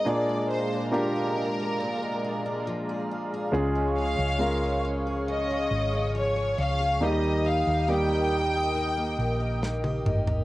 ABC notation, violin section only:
X:1
M:4/4
L:1/8
Q:1/4=69
K:Dblyd
V:1 name="Violin section"
=d c B4 z2 | z f2 z e2 d f | e f g4 z2 |]